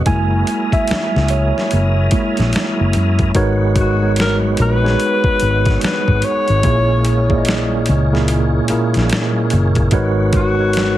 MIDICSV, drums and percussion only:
0, 0, Header, 1, 2, 480
1, 0, Start_track
1, 0, Key_signature, 5, "minor"
1, 0, Tempo, 821918
1, 34, Time_signature, 4, 2, 24, 8
1, 6411, End_track
2, 0, Start_track
2, 0, Title_t, "Drums"
2, 34, Note_on_c, 9, 42, 70
2, 35, Note_on_c, 9, 36, 95
2, 92, Note_off_c, 9, 42, 0
2, 94, Note_off_c, 9, 36, 0
2, 275, Note_on_c, 9, 42, 72
2, 334, Note_off_c, 9, 42, 0
2, 423, Note_on_c, 9, 36, 83
2, 425, Note_on_c, 9, 42, 34
2, 481, Note_off_c, 9, 36, 0
2, 483, Note_off_c, 9, 42, 0
2, 511, Note_on_c, 9, 42, 69
2, 533, Note_on_c, 9, 38, 101
2, 570, Note_off_c, 9, 42, 0
2, 591, Note_off_c, 9, 38, 0
2, 680, Note_on_c, 9, 38, 33
2, 739, Note_off_c, 9, 38, 0
2, 750, Note_on_c, 9, 42, 65
2, 809, Note_off_c, 9, 42, 0
2, 922, Note_on_c, 9, 38, 35
2, 980, Note_off_c, 9, 38, 0
2, 997, Note_on_c, 9, 42, 70
2, 1056, Note_off_c, 9, 42, 0
2, 1232, Note_on_c, 9, 42, 79
2, 1237, Note_on_c, 9, 36, 83
2, 1290, Note_off_c, 9, 42, 0
2, 1296, Note_off_c, 9, 36, 0
2, 1384, Note_on_c, 9, 42, 36
2, 1403, Note_on_c, 9, 38, 32
2, 1443, Note_off_c, 9, 42, 0
2, 1462, Note_off_c, 9, 38, 0
2, 1476, Note_on_c, 9, 42, 73
2, 1494, Note_on_c, 9, 38, 97
2, 1534, Note_off_c, 9, 42, 0
2, 1552, Note_off_c, 9, 38, 0
2, 1713, Note_on_c, 9, 42, 65
2, 1771, Note_off_c, 9, 42, 0
2, 1861, Note_on_c, 9, 42, 33
2, 1864, Note_on_c, 9, 36, 85
2, 1920, Note_off_c, 9, 42, 0
2, 1922, Note_off_c, 9, 36, 0
2, 1954, Note_on_c, 9, 42, 79
2, 1955, Note_on_c, 9, 36, 115
2, 2012, Note_off_c, 9, 42, 0
2, 2013, Note_off_c, 9, 36, 0
2, 2194, Note_on_c, 9, 36, 106
2, 2194, Note_on_c, 9, 42, 83
2, 2252, Note_off_c, 9, 36, 0
2, 2252, Note_off_c, 9, 42, 0
2, 2431, Note_on_c, 9, 42, 78
2, 2452, Note_on_c, 9, 38, 101
2, 2489, Note_off_c, 9, 42, 0
2, 2511, Note_off_c, 9, 38, 0
2, 2670, Note_on_c, 9, 42, 72
2, 2728, Note_off_c, 9, 42, 0
2, 2840, Note_on_c, 9, 38, 32
2, 2899, Note_off_c, 9, 38, 0
2, 2918, Note_on_c, 9, 42, 68
2, 2976, Note_off_c, 9, 42, 0
2, 3059, Note_on_c, 9, 36, 102
2, 3118, Note_off_c, 9, 36, 0
2, 3151, Note_on_c, 9, 42, 85
2, 3210, Note_off_c, 9, 42, 0
2, 3303, Note_on_c, 9, 42, 35
2, 3306, Note_on_c, 9, 36, 97
2, 3321, Note_on_c, 9, 38, 34
2, 3361, Note_off_c, 9, 42, 0
2, 3365, Note_off_c, 9, 36, 0
2, 3380, Note_off_c, 9, 38, 0
2, 3395, Note_on_c, 9, 42, 71
2, 3413, Note_on_c, 9, 38, 101
2, 3453, Note_off_c, 9, 42, 0
2, 3471, Note_off_c, 9, 38, 0
2, 3550, Note_on_c, 9, 36, 83
2, 3608, Note_off_c, 9, 36, 0
2, 3632, Note_on_c, 9, 42, 67
2, 3691, Note_off_c, 9, 42, 0
2, 3782, Note_on_c, 9, 42, 30
2, 3841, Note_off_c, 9, 42, 0
2, 3873, Note_on_c, 9, 42, 77
2, 3875, Note_on_c, 9, 36, 107
2, 3932, Note_off_c, 9, 42, 0
2, 3933, Note_off_c, 9, 36, 0
2, 4115, Note_on_c, 9, 42, 72
2, 4173, Note_off_c, 9, 42, 0
2, 4262, Note_on_c, 9, 36, 96
2, 4321, Note_off_c, 9, 36, 0
2, 4350, Note_on_c, 9, 42, 81
2, 4371, Note_on_c, 9, 38, 109
2, 4408, Note_off_c, 9, 42, 0
2, 4430, Note_off_c, 9, 38, 0
2, 4588, Note_on_c, 9, 42, 69
2, 4647, Note_off_c, 9, 42, 0
2, 4759, Note_on_c, 9, 38, 31
2, 4817, Note_off_c, 9, 38, 0
2, 4836, Note_on_c, 9, 42, 76
2, 4894, Note_off_c, 9, 42, 0
2, 5070, Note_on_c, 9, 42, 78
2, 5128, Note_off_c, 9, 42, 0
2, 5222, Note_on_c, 9, 42, 37
2, 5241, Note_on_c, 9, 38, 34
2, 5280, Note_off_c, 9, 42, 0
2, 5299, Note_off_c, 9, 38, 0
2, 5312, Note_on_c, 9, 42, 70
2, 5330, Note_on_c, 9, 38, 109
2, 5370, Note_off_c, 9, 42, 0
2, 5388, Note_off_c, 9, 38, 0
2, 5549, Note_on_c, 9, 42, 68
2, 5608, Note_off_c, 9, 42, 0
2, 5696, Note_on_c, 9, 42, 34
2, 5703, Note_on_c, 9, 36, 96
2, 5754, Note_off_c, 9, 42, 0
2, 5761, Note_off_c, 9, 36, 0
2, 5787, Note_on_c, 9, 42, 73
2, 5794, Note_on_c, 9, 36, 102
2, 5846, Note_off_c, 9, 42, 0
2, 5852, Note_off_c, 9, 36, 0
2, 6031, Note_on_c, 9, 42, 78
2, 6033, Note_on_c, 9, 36, 108
2, 6089, Note_off_c, 9, 42, 0
2, 6091, Note_off_c, 9, 36, 0
2, 6269, Note_on_c, 9, 42, 80
2, 6290, Note_on_c, 9, 38, 100
2, 6327, Note_off_c, 9, 42, 0
2, 6349, Note_off_c, 9, 38, 0
2, 6411, End_track
0, 0, End_of_file